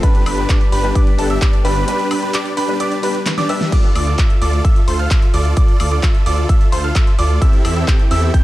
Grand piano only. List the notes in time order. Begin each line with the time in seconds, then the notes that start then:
0.03 B5
0.26 B5
0.38 B5
0.49 D6
0.72 B5
0.95 D6
1.19 A5
1.30 E6
1.42 D6
1.65 B5
1.88 B5
2.11 B5
2.23 B5
2.34 D6
2.57 B5
2.80 D6
3.03 B5
3.38 D6
3.49 E6
3.72 D6
3.95 D6
4.07 D6
4.18 E6
4.42 D6
4.65 E6
4.88 C6
4.99 F6
5.11 E6
5.34 D6
5.57 D6
5.80 D6
5.92 D6
6.03 E6
6.26 D6
6.49 E6
6.72 C6
6.84 F6
6.95 E6
7.19 D6
7.42 E6
7.65 E6
7.76 E6
7.88 G6
8.11 E6
8.34 G6